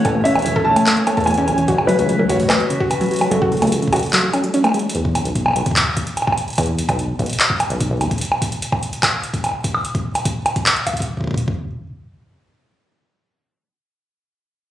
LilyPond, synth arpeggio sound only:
\new Staff \with { instrumentName = "Synth arpeggio sound" } { \time 4/4 \key e \major \tempo 4 = 147 a'16 a16 cis'16 r16 e16 a'16 r16 a16 a16 a16 a16 a'16 a16 cis'16 r16 e16 | fis'16 r16 fis16 fis16 fis16 fis16 fis'16 fis16 a16 r16 cis16 fis'16 r16 fis16 fis16 fis16 | fis16 fis'16 fis16 a16 r16 cis16 fis'16 r16 fis16 fis16 cis'16 fis16 cis'16 a16 gis16 r16 | r1 |
r1 | r1 | r1 | r1 |
r1 | }